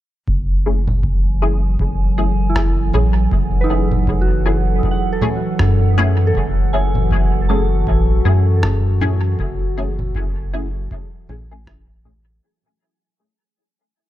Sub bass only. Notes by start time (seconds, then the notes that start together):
0.28 F#1
1.79 F#1
2.93 A1
3.32 F#1
5.59 F#2
6.35 F#1
7.87 A1
8.25 F#2
9.39 F#1
11.29 A1